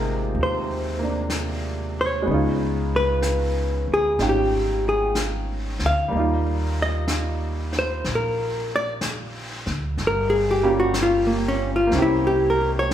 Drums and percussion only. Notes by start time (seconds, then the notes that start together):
0.33 brush sweep
1.30 brush sweep, snare, hi-hat pedal
2.26 brush sweep
3.22 brush sweep, snare, hi-hat pedal
4.19 brush sweep, snare
5.15 brush sweep, snare, hi-hat pedal
5.79 snare
6.12 brush sweep
7.08 brush sweep, snare, hi-hat pedal
7.72 snare
8.04 brush sweep, snare
9.01 brush sweep, snare, hi-hat pedal
9.66 snare
9.98 brush sweep, snare
10.94 brush sweep, snare, hi-hat pedal
11.91 brush sweep, snare